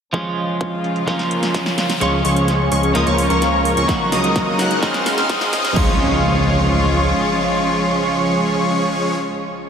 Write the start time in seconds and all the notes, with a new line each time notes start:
0.13 C#3 F3 G#3 C#4 F4, kick, riser
0.37 closed hi-hat
0.49 closed hi-hat
0.61 kick
0.84 closed hi-hat
0.96 closed hi-hat
1.06 F3 A#3 C#4 F4, kick, snare, closed hi-hat
1.19 snare, closed hi-hat
1.31 closed hi-hat
1.43 snare, closed hi-hat
1.54 kick, snare, closed hi-hat
1.66 snare
1.78 snare, closed hi-hat
1.90 snare, closed hi-hat
2.00 C#2 F3 G#3 C#4 F4 G#4 C#5 G#5 C#6, snare, closed hi-hat, riser
2.25 C#2 F3 G#3 C#4 G#4 C#5 C#6, open hi-hat
2.37 closed hi-hat
2.48 snare, closed hi-hat
2.72 C#2 F3 G#3 C#4 G#4 C#5 C#6, open hi-hat
2.83 closed hi-hat
2.94 C#2 F3 A#3 C#4 F4 A#4 D#5 A#5 D#6, snare, closed hi-hat
3.07 C#2 F3 A#3 C#4 A#4 C#5 C#6, closed hi-hat
3.18 open hi-hat
3.30 C#2 F3 A#3 C#4 A#4 C#5 C#6, closed hi-hat
3.42 snare, closed hi-hat
3.65 open hi-hat
3.77 C#2 F3 A#3 C#4 A#4 C#5 C#6, closed hi-hat
3.88 C#3 F#3 A#3 D#4 F#4 D#5 A#5, kick, snare, closed hi-hat
4.12 C#2 F#3 A#3 D#4 A#4 D#5 D#6, snare, open hi-hat
4.24 closed hi-hat
4.36 kick, snare, closed hi-hat
4.59 C#2 F#3 A#3 D#4 A#4 F#5 F#6, snare, open hi-hat
4.71 closed hi-hat
4.82 C#2 C#3 G#3 C4 D#4 G#4 D#5 F5 C6 F6, kick, snare, closed hi-hat
4.94 snare, closed hi-hat
5.06 snare, open hi-hat
5.18 C#2 G#3 C4 D#4 C5 F5 F6, snare, closed hi-hat
5.29 C#2 G#3 C4 D#4 C5 D#5 D#6, kick, snare, closed hi-hat
5.41 snare
5.53 snare, open hi-hat
5.65 snare, closed hi-hat
5.75 C#2 C#3 F3 G#3 C#4 F4 G#4 C#5 C#6, kick, crash, impact